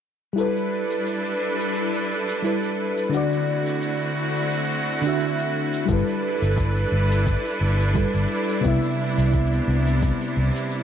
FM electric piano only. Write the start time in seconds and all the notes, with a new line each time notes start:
0.33 G3 E4
0.38 A4 B4
2.42 G3 E4 A4 B4
3.09 D3 D4
3.14 F#4 D5
5.02 D3 D4
5.06 F#4 E5
5.85 G3 E4
5.91 A4 B4
7.94 G3 E4 A4 B4
8.61 C3 B3
8.66 E4 E5